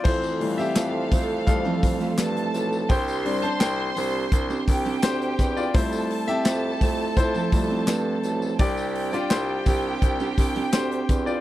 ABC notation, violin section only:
X:1
M:4/4
L:1/8
Q:1/4=84
K:F
V:1 name="Violin section"
[Af]6 [Aa]2 | [cc']4- [cc'] [Gg]3 | [Aa]8 | [Gg]8 |]